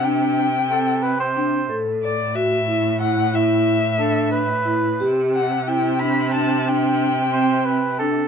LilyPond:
<<
  \new Staff \with { instrumentName = "Violin" } { \time 5/8 \key c \lydian \tempo 4 = 91 g''2 r8 | r8 d''8 e''4 fis''8 | e''2 r8 | r8 fis''8 g''8 b''8 a''8 |
g''2 r8 | }
  \new Staff \with { instrumentName = "Cor anglais" } { \time 5/8 \key c \lydian r4 a'8 b'16 c''8.~ | c''16 r2 r16 | r4 a'8 b'4~ | b'16 r2 r16 |
r4 c''8 b'8 a'8 | }
  \new Staff \with { instrumentName = "Vibraphone" } { \time 5/8 \key c \lydian d'4 c'4 d'8 | a'4 fis'8 e'8 e'8 | e'4 d'4 e'8 | g'4 e'8 d'8 d'8 |
d'4 c'4 d'8 | }
  \new Staff \with { instrumentName = "Cello" } { \clef bass \time 5/8 \key c \lydian c2~ c8 | a,2~ a,8~ | a,2~ a,8 | c2~ c8~ |
c2~ c8 | }
>>